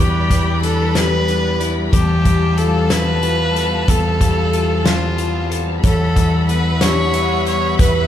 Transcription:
0.00 1.61 E2 medium
0.00 1.89 E2 medium
0.00 0.96 G3 soft
0.00 8.07 G3 medium
0.00 0.62 D4 soft
0.00 1.28 E4 soft
0.00 0.59 G4 medium
0.00 1.89 B4 soft
0.00 1.90 D5 soft
0.00 1.90 B5 medium
0.30 1.93 E3 soft
0.30 kick medium
0.30 closed hi-hat medium
0.62 1.27 D4 soft
0.62 0.97 A4 medium
0.62 closed hi-hat soft
0.95 2.26 G3 soft
0.95 1.69 B4 medium
0.95 snare medium
0.95 closed hi-hat medium
1.28 1.93 D4 medium
1.28 closed hi-hat soft
1.61 1.93 E4 soft
1.61 closed hi-hat soft
1.92 3.85 E2 medium
1.92 3.57 E2 medium
1.92 5.80 C4 soft
1.92 2.59 G4 medium
1.92 5.80 F5 soft
1.92 5.80 A5 medium
1.92 kick medium
1.92 closed hi-hat medium
2.25 4.21 G3 medium
2.25 kick medium
2.25 closed hi-hat soft
2.57 3.21 F4 medium
2.57 2.93 A4 medium
2.57 closed hi-hat soft
2.90 4.54 C4 soft
2.90 3.91 B4 medium
2.90 snare medium
2.90 closed hi-hat medium
3.22 4.52 F4 soft
3.22 closed hi-hat soft
3.55 5.18 A4 medium
3.55 closed hi-hat soft
3.87 5.51 E2 medium
3.87 5.80 E2 medium
3.87 4.87 A4 medium
3.87 kick medium
3.87 closed hi-hat medium
4.21 6.17 G3 soft
4.21 kick medium
4.21 closed hi-hat medium
4.53 5.18 F4 soft
4.53 closed hi-hat soft
4.85 5.84 C4 medium
4.85 5.59 F4 medium
4.85 snare medium
4.85 closed hi-hat medium
5.18 5.84 F4 soft
5.18 closed hi-hat soft
5.51 5.84 A4 soft
5.51 closed hi-hat soft
5.84 7.75 E2 medium
5.84 7.80 E2 medium
5.84 6.45 A4 medium
5.84 6.49 C#5 medium
5.84 8.07 E5 soft
5.84 8.07 F#5 soft
5.84 8.07 B5 medium
5.84 kick medium
5.84 closed hi-hat medium
6.16 8.07 E3 medium
6.16 kick medium
6.16 closed hi-hat soft
6.49 7.14 B3 soft
6.49 6.82 B4 medium
6.49 6.83 B4 medium
6.49 closed hi-hat soft
6.81 8.07 G3 medium
6.81 7.14 D4 medium
6.81 7.47 C#5 medium
6.81 snare medium
6.81 closed hi-hat medium
7.14 8.07 B3 soft
7.14 7.79 C#5 medium
7.14 closed hi-hat soft
7.47 7.77 C#5 medium
7.47 closed hi-hat soft
7.79 8.07 E2 medium
7.79 8.07 B4 medium
7.79 kick medium
7.79 closed hi-hat medium

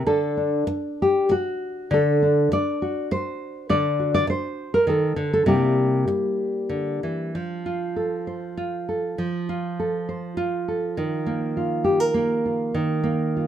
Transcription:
0.06 0.67 D3 medium
0.06 0.99 A4 medium
0.37 2.22 D4 soft
0.67 muted nylon-string guitar stroke medium
1.02 1.32 G4 medium
1.29 1.92 F#4 medium
1.29 muted nylon-string guitar stroke medium
1.91 2.51 D3 medium
1.91 2.82 A4 medium
2.22 3.67 D4 soft
2.52 3.11 D5 medium
2.52 muted nylon-string guitar stroke medium
2.82 3.67 F#4 medium
3.11 3.70 C5 medium
3.11 muted nylon-string guitar stroke medium
3.69 4.26 D3 medium
3.69 4.13 D5 loud
3.99 5.45 F#4 soft
4.14 4.29 D5 loud
4.27 5.34 C5 medium
4.27 muted nylon-string guitar stroke medium
4.74 4.89 A#4 loud
4.87 5.16 D#3 medium
4.87 5.32 A4 medium
5.16 5.46 D3 medium
5.33 5.48 A4 medium
5.46 6.07 C3 medium
5.46 7.31 G3 soft
5.46 7.35 A#3 medium
5.46 7.32 E4 soft
5.46 7.35 G4 medium
6.08 muted nylon-string guitar stroke medium
6.69 7.03 D3 medium
7.03 7.35 E3 medium
7.35 9.18 F3 medium
7.66 8.57 F4 soft
7.96 8.87 A4 soft
8.27 9.16 C5 medium
8.57 9.49 F4 soft
8.89 9.16 A4 soft
9.18 12.74 F3 medium
9.49 10.37 F4 soft
9.79 10.67 A4 medium
10.09 10.94 C5 medium
10.37 11.00 F4 medium
10.68 10.95 A4 medium
10.97 12.71 D#3 medium
11.26 12.13 A#3 soft
11.57 12.45 F4 medium
11.84 12.00 G4 medium
12.00 12.75 A#4 soft
12.14 13.02 A#3 medium
12.46 12.77 F4 soft
12.74 13.47 D#3 medium
13.04 13.47 A#3 medium
13.37 13.47 F4 medium

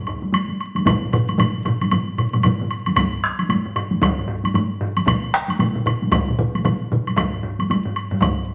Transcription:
0.07 taiko medium
0.07 high woodblock soft
0.22 taiko high soft
0.33 taiko high medium
0.33 high woodblock soft
0.49 taiko high soft
0.61 high woodblock soft
0.75 taiko high soft
0.75 high woodblock soft
0.85 taiko medium
0.85 taiko low-mid medium
0.85 taiko mid loud
0.85 taiko high medium
0.85 high woodblock soft
1.13 taiko low-mid medium
1.13 taiko mid loud
1.13 high woodblock soft
1.28 taiko high soft
1.28 high woodblock soft
1.38 taiko low-mid medium
1.38 taiko mid medium
1.38 taiko high medium
1.38 high woodblock soft
1.65 taiko low-mid medium
1.65 taiko mid medium
1.65 high woodblock soft
1.81 taiko high soft
1.81 high woodblock soft
1.91 taiko low-mid medium
1.91 taiko mid medium
1.91 taiko high medium
1.91 high woodblock soft
2.18 taiko low-mid medium
2.18 taiko mid medium
2.18 high woodblock soft
2.33 taiko low-mid medium
2.33 taiko mid medium
2.33 taiko high soft
2.33 high woodblock soft
2.43 taiko low-mid medium
2.43 taiko mid medium
2.43 taiko high medium
2.43 high woodblock soft
2.59 taiko low-mid medium
2.59 taiko mid medium
2.71 high woodblock soft
2.86 taiko high medium
2.86 high woodblock soft
2.96 taiko medium
2.96 taiko low-mid loud
2.96 taiko high medium
2.96 high woodblock medium
3.24 taiko rim medium
3.39 taiko high soft
3.39 high woodblock soft
3.49 taiko low-mid medium
3.49 taiko high medium
3.49 high woodblock soft
3.66 taiko low-mid medium
3.76 taiko low-mid loud
3.76 high woodblock soft
3.91 taiko high medium
4.02 taiko loud
4.02 taiko low-mid medium
4.02 taiko high medium
4.02 high woodblock medium
4.18 taiko low-mid medium
4.28 taiko low-mid loud
4.44 taiko high medium
4.44 high woodblock soft
4.54 taiko low-mid medium
4.54 taiko high medium
4.54 high woodblock soft
4.81 taiko low-mid loud
4.97 taiko high soft
4.97 high woodblock soft
5.06 taiko medium
5.06 taiko mid loud
5.06 taiko high medium
5.06 high woodblock medium
5.34 taiko rim medium
5.49 taiko high soft
5.49 high woodblock soft
5.59 taiko mid medium
5.59 taiko high medium
5.59 high woodblock soft
5.75 taiko mid medium
5.86 taiko mid medium
5.86 high woodblock soft
6.02 taiko high soft
6.12 taiko loud
6.12 taiko mid medium
6.12 taiko high medium
6.12 high woodblock medium
6.28 taiko mid medium
6.39 taiko mid loud
6.55 taiko high soft
6.55 high woodblock soft
6.65 taiko mid loud
6.65 taiko high medium
6.65 high woodblock soft
6.92 taiko mid medium
7.07 taiko high soft
7.07 high woodblock soft
7.16 taiko medium
7.16 taiko low-mid medium
7.16 taiko high medium
7.16 high woodblock medium
7.33 taiko low-mid medium
7.43 taiko low-mid medium
7.59 taiko high soft
7.59 high woodblock soft
7.70 taiko high medium
7.70 high woodblock soft
7.86 taiko low-mid medium
7.96 high woodblock soft
8.11 taiko low-mid medium
8.11 taiko high soft
8.21 taiko loud
8.21 taiko low-mid loud
8.21 taiko high medium
8.21 high woodblock soft

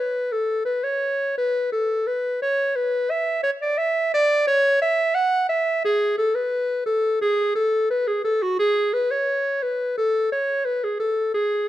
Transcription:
0.00 0.33 B4 medium
0.32 0.64 A4 medium
0.65 0.85 B4 medium
0.84 1.36 C#5 medium
1.37 1.71 B4 loud
1.72 2.08 A4 medium
2.07 2.41 B4 medium
2.42 2.77 C#5 medium
2.76 3.12 B4 medium
3.10 3.42 E5 loud
3.43 3.51 C#5 loud
3.62 3.79 D5 medium
3.78 4.12 E5 loud
4.14 4.47 D5 loud
4.47 4.80 C#5 loud
4.82 5.16 E5 loud
5.14 5.48 F#5 loud
5.49 5.83 E5 medium
5.85 6.17 G#4 loud
6.18 6.36 A4 loud
6.35 6.85 B4 medium
6.86 7.19 A4 medium
7.21 7.54 G#4 loud
7.55 7.89 A4 medium
7.90 8.09 B4 medium
8.07 8.24 G#4 medium
8.24 8.44 A4 medium
8.42 8.58 F#4 medium
8.59 8.95 G#4 loud
8.93 9.13 B4 medium
9.11 9.64 C#5 medium
9.63 9.97 B4 medium
9.97 10.31 A4 loud
10.32 10.66 C#5 medium
10.65 10.85 B4 medium
10.84 10.99 G#4 medium
10.99 11.33 A4 medium
11.34 11.69 G#4 medium

